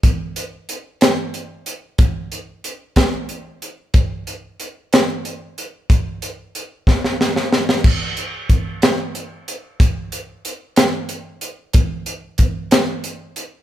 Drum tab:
CC |------------|------------|------------|------------|
HH |x-x-x-x-x-x-|x-x-x-x-x-x-|x-x-x-x-x-x-|x-x-x-------|
SD |------o-----|------o-----|------o-----|------oooooo|
BD |o-----------|o-----o-----|o-----------|o-----o-----|

CC |x-----------|------------|------------|
HH |--x-x-x-x-x-|x-x-x-x-x-x-|x-x-x-x-x-x-|
SD |------o-----|------o-----|------o-----|
BD |o---o-------|o-----------|o---o-------|